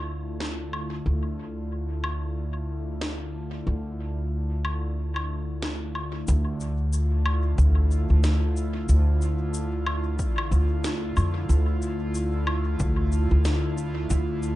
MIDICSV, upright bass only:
0, 0, Header, 1, 2, 480
1, 0, Start_track
1, 0, Key_signature, -1, "minor"
1, 0, Tempo, 652174
1, 781, Time_signature, 4, 2, 24, 8
1, 10712, End_track
2, 0, Start_track
2, 0, Title_t, "Upright bass"
2, 0, Program_c, 0, 32
2, 0, Note_on_c, 0, 38, 74
2, 759, Note_off_c, 0, 38, 0
2, 778, Note_on_c, 0, 38, 77
2, 2679, Note_off_c, 0, 38, 0
2, 2698, Note_on_c, 0, 38, 81
2, 4599, Note_off_c, 0, 38, 0
2, 4624, Note_on_c, 0, 38, 99
2, 5563, Note_off_c, 0, 38, 0
2, 5580, Note_on_c, 0, 38, 88
2, 5933, Note_off_c, 0, 38, 0
2, 5961, Note_on_c, 0, 38, 88
2, 6522, Note_off_c, 0, 38, 0
2, 6542, Note_on_c, 0, 38, 98
2, 7482, Note_off_c, 0, 38, 0
2, 7738, Note_on_c, 0, 38, 89
2, 8200, Note_off_c, 0, 38, 0
2, 8219, Note_on_c, 0, 41, 84
2, 8436, Note_off_c, 0, 41, 0
2, 8458, Note_on_c, 0, 38, 97
2, 9400, Note_off_c, 0, 38, 0
2, 9419, Note_on_c, 0, 38, 93
2, 9773, Note_off_c, 0, 38, 0
2, 9796, Note_on_c, 0, 38, 89
2, 10360, Note_off_c, 0, 38, 0
2, 10379, Note_on_c, 0, 38, 98
2, 10712, Note_off_c, 0, 38, 0
2, 10712, End_track
0, 0, End_of_file